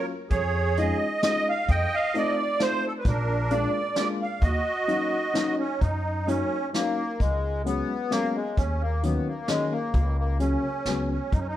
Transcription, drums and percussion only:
0, 0, Header, 1, 2, 480
1, 0, Start_track
1, 0, Key_signature, -6, "minor"
1, 0, Tempo, 459067
1, 321, Time_signature, 3, 2, 24, 8
1, 6079, Key_signature, 6, "major"
1, 12093, End_track
2, 0, Start_track
2, 0, Title_t, "Drums"
2, 316, Note_on_c, 9, 42, 34
2, 321, Note_on_c, 9, 36, 67
2, 421, Note_off_c, 9, 42, 0
2, 426, Note_off_c, 9, 36, 0
2, 805, Note_on_c, 9, 42, 44
2, 910, Note_off_c, 9, 42, 0
2, 1283, Note_on_c, 9, 38, 59
2, 1283, Note_on_c, 9, 42, 48
2, 1387, Note_off_c, 9, 38, 0
2, 1387, Note_off_c, 9, 42, 0
2, 1763, Note_on_c, 9, 36, 73
2, 1764, Note_on_c, 9, 42, 44
2, 1868, Note_off_c, 9, 36, 0
2, 1868, Note_off_c, 9, 42, 0
2, 2245, Note_on_c, 9, 42, 42
2, 2350, Note_off_c, 9, 42, 0
2, 2718, Note_on_c, 9, 38, 53
2, 2718, Note_on_c, 9, 42, 39
2, 2823, Note_off_c, 9, 38, 0
2, 2823, Note_off_c, 9, 42, 0
2, 3190, Note_on_c, 9, 36, 78
2, 3193, Note_on_c, 9, 42, 46
2, 3294, Note_off_c, 9, 36, 0
2, 3298, Note_off_c, 9, 42, 0
2, 3664, Note_on_c, 9, 42, 46
2, 3769, Note_off_c, 9, 42, 0
2, 4140, Note_on_c, 9, 38, 61
2, 4140, Note_on_c, 9, 42, 36
2, 4245, Note_off_c, 9, 38, 0
2, 4245, Note_off_c, 9, 42, 0
2, 4621, Note_on_c, 9, 36, 75
2, 4622, Note_on_c, 9, 42, 43
2, 4725, Note_off_c, 9, 36, 0
2, 4726, Note_off_c, 9, 42, 0
2, 5107, Note_on_c, 9, 42, 41
2, 5212, Note_off_c, 9, 42, 0
2, 5594, Note_on_c, 9, 38, 58
2, 5594, Note_on_c, 9, 42, 36
2, 5699, Note_off_c, 9, 38, 0
2, 5699, Note_off_c, 9, 42, 0
2, 6078, Note_on_c, 9, 42, 40
2, 6079, Note_on_c, 9, 36, 65
2, 6182, Note_off_c, 9, 42, 0
2, 6184, Note_off_c, 9, 36, 0
2, 6567, Note_on_c, 9, 42, 46
2, 6672, Note_off_c, 9, 42, 0
2, 7051, Note_on_c, 9, 38, 49
2, 7051, Note_on_c, 9, 42, 38
2, 7155, Note_off_c, 9, 38, 0
2, 7155, Note_off_c, 9, 42, 0
2, 7529, Note_on_c, 9, 36, 76
2, 7535, Note_on_c, 9, 42, 32
2, 7634, Note_off_c, 9, 36, 0
2, 7639, Note_off_c, 9, 42, 0
2, 8013, Note_on_c, 9, 42, 46
2, 8117, Note_off_c, 9, 42, 0
2, 8488, Note_on_c, 9, 38, 53
2, 8488, Note_on_c, 9, 42, 39
2, 8593, Note_off_c, 9, 38, 0
2, 8593, Note_off_c, 9, 42, 0
2, 8966, Note_on_c, 9, 36, 81
2, 8969, Note_on_c, 9, 42, 47
2, 9070, Note_off_c, 9, 36, 0
2, 9073, Note_off_c, 9, 42, 0
2, 9445, Note_on_c, 9, 42, 44
2, 9550, Note_off_c, 9, 42, 0
2, 9912, Note_on_c, 9, 38, 52
2, 9912, Note_on_c, 9, 42, 35
2, 10017, Note_off_c, 9, 38, 0
2, 10017, Note_off_c, 9, 42, 0
2, 10389, Note_on_c, 9, 42, 39
2, 10393, Note_on_c, 9, 36, 76
2, 10494, Note_off_c, 9, 42, 0
2, 10498, Note_off_c, 9, 36, 0
2, 10873, Note_on_c, 9, 42, 46
2, 10978, Note_off_c, 9, 42, 0
2, 11351, Note_on_c, 9, 38, 49
2, 11351, Note_on_c, 9, 42, 34
2, 11455, Note_off_c, 9, 38, 0
2, 11455, Note_off_c, 9, 42, 0
2, 11839, Note_on_c, 9, 42, 40
2, 11841, Note_on_c, 9, 36, 65
2, 11943, Note_off_c, 9, 42, 0
2, 11946, Note_off_c, 9, 36, 0
2, 12093, End_track
0, 0, End_of_file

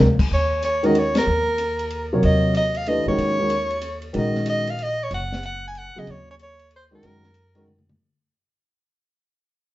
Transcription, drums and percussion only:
0, 0, Header, 1, 2, 480
1, 0, Start_track
1, 0, Tempo, 320171
1, 460, Time_signature, 3, 2, 24, 8
1, 14608, End_track
2, 0, Start_track
2, 0, Title_t, "Drums"
2, 289, Note_on_c, 9, 36, 77
2, 295, Note_on_c, 9, 49, 81
2, 439, Note_off_c, 9, 36, 0
2, 445, Note_off_c, 9, 49, 0
2, 937, Note_on_c, 9, 44, 55
2, 937, Note_on_c, 9, 51, 52
2, 1087, Note_off_c, 9, 44, 0
2, 1087, Note_off_c, 9, 51, 0
2, 1251, Note_on_c, 9, 51, 40
2, 1401, Note_off_c, 9, 51, 0
2, 1425, Note_on_c, 9, 51, 54
2, 1575, Note_off_c, 9, 51, 0
2, 1723, Note_on_c, 9, 51, 65
2, 1729, Note_on_c, 9, 38, 65
2, 1873, Note_off_c, 9, 51, 0
2, 1879, Note_off_c, 9, 38, 0
2, 2370, Note_on_c, 9, 44, 50
2, 2370, Note_on_c, 9, 51, 58
2, 2520, Note_off_c, 9, 44, 0
2, 2520, Note_off_c, 9, 51, 0
2, 2685, Note_on_c, 9, 51, 45
2, 2835, Note_off_c, 9, 51, 0
2, 2856, Note_on_c, 9, 51, 54
2, 3006, Note_off_c, 9, 51, 0
2, 3339, Note_on_c, 9, 51, 53
2, 3489, Note_off_c, 9, 51, 0
2, 3815, Note_on_c, 9, 44, 53
2, 3815, Note_on_c, 9, 51, 63
2, 3965, Note_off_c, 9, 44, 0
2, 3965, Note_off_c, 9, 51, 0
2, 4117, Note_on_c, 9, 51, 41
2, 4267, Note_off_c, 9, 51, 0
2, 4294, Note_on_c, 9, 51, 53
2, 4444, Note_off_c, 9, 51, 0
2, 4773, Note_on_c, 9, 51, 51
2, 4923, Note_off_c, 9, 51, 0
2, 5244, Note_on_c, 9, 44, 55
2, 5244, Note_on_c, 9, 51, 62
2, 5394, Note_off_c, 9, 44, 0
2, 5394, Note_off_c, 9, 51, 0
2, 5555, Note_on_c, 9, 51, 45
2, 5705, Note_off_c, 9, 51, 0
2, 5719, Note_on_c, 9, 44, 57
2, 5719, Note_on_c, 9, 51, 61
2, 5869, Note_off_c, 9, 44, 0
2, 5869, Note_off_c, 9, 51, 0
2, 6023, Note_on_c, 9, 51, 39
2, 6173, Note_off_c, 9, 51, 0
2, 6203, Note_on_c, 9, 51, 57
2, 6353, Note_off_c, 9, 51, 0
2, 6522, Note_on_c, 9, 38, 33
2, 6672, Note_off_c, 9, 38, 0
2, 6682, Note_on_c, 9, 44, 53
2, 6682, Note_on_c, 9, 51, 68
2, 6832, Note_off_c, 9, 44, 0
2, 6832, Note_off_c, 9, 51, 0
2, 7006, Note_on_c, 9, 51, 47
2, 7156, Note_off_c, 9, 51, 0
2, 7176, Note_on_c, 9, 51, 52
2, 7326, Note_off_c, 9, 51, 0
2, 7658, Note_on_c, 9, 51, 58
2, 7808, Note_off_c, 9, 51, 0
2, 7980, Note_on_c, 9, 38, 59
2, 8130, Note_off_c, 9, 38, 0
2, 8142, Note_on_c, 9, 44, 51
2, 8142, Note_on_c, 9, 51, 64
2, 8292, Note_off_c, 9, 44, 0
2, 8292, Note_off_c, 9, 51, 0
2, 8620, Note_on_c, 9, 51, 52
2, 8770, Note_off_c, 9, 51, 0
2, 9101, Note_on_c, 9, 51, 54
2, 9251, Note_off_c, 9, 51, 0
2, 9585, Note_on_c, 9, 44, 46
2, 9585, Note_on_c, 9, 51, 59
2, 9735, Note_off_c, 9, 44, 0
2, 9735, Note_off_c, 9, 51, 0
2, 9885, Note_on_c, 9, 51, 46
2, 10035, Note_off_c, 9, 51, 0
2, 10053, Note_on_c, 9, 51, 55
2, 10203, Note_off_c, 9, 51, 0
2, 10537, Note_on_c, 9, 51, 61
2, 10687, Note_off_c, 9, 51, 0
2, 10845, Note_on_c, 9, 38, 45
2, 10995, Note_off_c, 9, 38, 0
2, 11004, Note_on_c, 9, 44, 51
2, 11004, Note_on_c, 9, 51, 66
2, 11154, Note_off_c, 9, 44, 0
2, 11154, Note_off_c, 9, 51, 0
2, 11319, Note_on_c, 9, 51, 44
2, 11469, Note_off_c, 9, 51, 0
2, 11509, Note_on_c, 9, 47, 40
2, 11659, Note_off_c, 9, 47, 0
2, 11674, Note_on_c, 9, 47, 52
2, 11824, Note_off_c, 9, 47, 0
2, 11835, Note_on_c, 9, 47, 75
2, 11985, Note_off_c, 9, 47, 0
2, 14608, End_track
0, 0, End_of_file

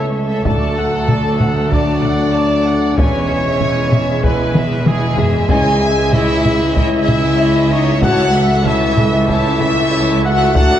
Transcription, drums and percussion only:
0, 0, Header, 1, 2, 480
1, 0, Start_track
1, 0, Tempo, 631579
1, 344, Time_signature, 4, 2, 24, 8
1, 8204, End_track
2, 0, Start_track
2, 0, Title_t, "Taiko and cinematic ensemble drums"
2, 340, Note_on_c, 9, 41, 100
2, 416, Note_off_c, 9, 41, 0
2, 822, Note_on_c, 9, 45, 64
2, 898, Note_off_c, 9, 45, 0
2, 1063, Note_on_c, 9, 45, 52
2, 1139, Note_off_c, 9, 45, 0
2, 1300, Note_on_c, 9, 41, 84
2, 1376, Note_off_c, 9, 41, 0
2, 1542, Note_on_c, 9, 45, 54
2, 1618, Note_off_c, 9, 45, 0
2, 2264, Note_on_c, 9, 41, 109
2, 2340, Note_off_c, 9, 41, 0
2, 2739, Note_on_c, 9, 45, 64
2, 2815, Note_off_c, 9, 45, 0
2, 2977, Note_on_c, 9, 45, 56
2, 3053, Note_off_c, 9, 45, 0
2, 3221, Note_on_c, 9, 41, 93
2, 3297, Note_off_c, 9, 41, 0
2, 3458, Note_on_c, 9, 47, 87
2, 3534, Note_off_c, 9, 47, 0
2, 3698, Note_on_c, 9, 47, 99
2, 3774, Note_off_c, 9, 47, 0
2, 3934, Note_on_c, 9, 43, 103
2, 4010, Note_off_c, 9, 43, 0
2, 4174, Note_on_c, 9, 41, 102
2, 4250, Note_off_c, 9, 41, 0
2, 4657, Note_on_c, 9, 45, 64
2, 4733, Note_off_c, 9, 45, 0
2, 4904, Note_on_c, 9, 45, 57
2, 4980, Note_off_c, 9, 45, 0
2, 5139, Note_on_c, 9, 41, 88
2, 5215, Note_off_c, 9, 41, 0
2, 5381, Note_on_c, 9, 45, 54
2, 5457, Note_off_c, 9, 45, 0
2, 6097, Note_on_c, 9, 41, 110
2, 6173, Note_off_c, 9, 41, 0
2, 6577, Note_on_c, 9, 45, 69
2, 6653, Note_off_c, 9, 45, 0
2, 6813, Note_on_c, 9, 45, 61
2, 6889, Note_off_c, 9, 45, 0
2, 7057, Note_on_c, 9, 41, 96
2, 7133, Note_off_c, 9, 41, 0
2, 7295, Note_on_c, 9, 45, 57
2, 7371, Note_off_c, 9, 45, 0
2, 8018, Note_on_c, 9, 41, 119
2, 8094, Note_off_c, 9, 41, 0
2, 8204, End_track
0, 0, End_of_file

